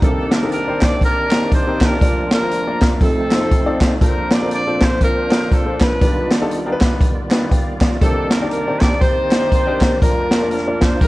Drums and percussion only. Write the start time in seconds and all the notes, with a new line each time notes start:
0.02 kick, closed hi-hat
0.31 snare, clap, closed hi-hat
0.52 closed hi-hat
0.82 kick, snare, clap, closed hi-hat
1.01 kick, closed hi-hat
1.31 snare, clap, closed hi-hat
1.52 kick, closed hi-hat
1.81 kick, snare, clap, closed hi-hat
2.01 kick, closed hi-hat
2.31 snare, clap, closed hi-hat
2.51 closed hi-hat
2.81 kick, snare, clap, closed hi-hat
3.01 kick, closed hi-hat
3.31 snare, clap, closed hi-hat
3.51 kick, closed hi-hat
3.81 kick, snare, clap, closed hi-hat
4.01 kick, closed hi-hat
4.31 snare, clap, closed hi-hat
4.51 closed hi-hat
4.81 kick, snare, clap, closed hi-hat
5.01 kick, closed hi-hat
5.31 snare, clap, closed hi-hat
5.52 kick, closed hi-hat
5.81 kick, snare, clap, closed hi-hat
6.01 kick, closed hi-hat
6.31 snare, clap, closed hi-hat
6.51 closed hi-hat
6.81 kick, snare, clap, closed hi-hat
7.01 kick, closed hi-hat
7.31 snare, clap, closed hi-hat
7.51 kick, closed hi-hat
7.81 kick, snare, clap, closed hi-hat
8.01 kick, closed hi-hat
8.31 snare, clap, closed hi-hat
8.51 closed hi-hat
8.81 kick, snare, clap, closed hi-hat
9.01 kick, closed hi-hat
9.31 snare, clap, closed hi-hat
9.52 kick, closed hi-hat
9.81 kick, snare, clap, closed hi-hat
10.02 kick, closed hi-hat
10.31 snare, clap, closed hi-hat
10.51 closed hi-hat
10.81 kick, snare, clap, closed hi-hat
11.01 kick, closed hi-hat